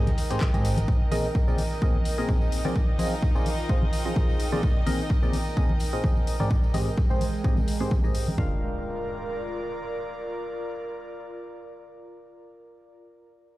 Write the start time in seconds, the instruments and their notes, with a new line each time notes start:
Already playing: synth stab G#2 C4 G4 G#4 D#5, violin section D#4 D#5, analog synth pad A#4 D#5 G5
0.07 fm bass D#2, snare, closed hi-hat, high conga
0.18 closed hi-hat, open hi-hat, tambourine
0.30 synth stab G#2 C4 G4 G#4 C5, snare, closed hi-hat, tambourine
0.41 kick, snare, clap, closed hi-hat, tambourine, high conga
0.54 fm bass G#1, synth stab G#2 C4 G4 G#4 D#5, closed hi-hat, tambourine
0.65 closed hi-hat, open hi-hat, tambourine
0.77 closed hi-hat, tambourine, high conga
0.88 violin section D#4 D#5, kick, tambourine
1.11 synth stab A#2 C4 G#4 A#4 D#5, open hi-hat, tambourine, high conga
1.24 tambourine
1.35 kick, tambourine
1.48 synth stab A#2 C4 G#4 A#4 D5, tambourine
1.58 open hi-hat, tambourine, high conga
1.71 tambourine
1.81 synth stab A#2 C4 G#4 A#4 D#5, kick, tambourine
1.95 high conga
2.05 open hi-hat, tambourine
2.18 synth stab A#2 C4 G#4 A#4 D#5, tambourine
2.28 kick, tambourine, high conga
2.41 tambourine
2.52 open hi-hat, tambourine
2.65 synth stab F3 C4 G#4 A#4 D5, tambourine, high conga
2.75 analog synth pad F4, kick, tambourine
2.99 synth stab F3 C4 F4 G#4 D#5, open hi-hat, tambourine, high conga
3.12 tambourine
3.22 kick, tambourine
3.35 synth stab F3 C4 F4 G#4 D5, tambourine
3.46 open hi-hat, tambourine, high conga
3.59 tambourine
3.69 synth stab F3 C4 F4 G#4 D#5, kick, tambourine
3.82 high conga
3.93 open hi-hat, tambourine
4.05 synth stab F3 C4 F4 G#4 D#5, tambourine
4.16 kick, tambourine, high conga
4.29 tambourine
4.40 open hi-hat, tambourine
4.52 synth stab A#2 C4 F4 G#4 D5, tambourine, high conga
4.63 kick, tambourine
4.86 synth stab A#2 C4 G#4 A#4 D#5, open hi-hat, tambourine, high conga
5.00 tambourine
5.09 kick, tambourine
5.23 synth stab A#2 C4 G#4 A#4 D5, tambourine
5.33 open hi-hat, tambourine, high conga
5.47 tambourine
5.57 synth stab A#2 C4 G#4 A#4 D#5, kick, tambourine
5.69 high conga
5.80 open hi-hat, tambourine
5.92 synth stab A#2 C4 G#4 A#4 D#5, tambourine
6.04 kick, tambourine, high conga
6.17 tambourine
6.27 open hi-hat, tambourine
6.40 synth stab G#2 C4 G#4 A#4 D5, tambourine, high conga
6.50 analog synth pad G#3, kick, tambourine
6.63 tambourine
6.74 synth stab G#2 C4 G4 G#4 D#5, open hi-hat, tambourine, high conga
6.87 tambourine
6.98 kick, tambourine
7.10 synth stab G#2 C4 G4 G#4 C5, tambourine
7.21 open hi-hat, tambourine, high conga
7.34 tambourine
7.44 synth stab G#2 C4 G4 G#4 D#5, kick, tambourine
7.57 tambourine, high conga
7.68 open hi-hat, tambourine
7.80 synth stab G#2 C4 G4 G#4 C5, tambourine
7.90 kick, tambourine, high conga
8.04 synth stab G#2 C4 G4 G#4 D#5, tambourine
8.15 open hi-hat, tambourine
8.28 tambourine, high conga
8.38 synth stab D4 F4 A#4 F5, analog synth pad F4, kick, floor tom, impact
8.46 analog synth pad A#4
8.53 analog synth pad D5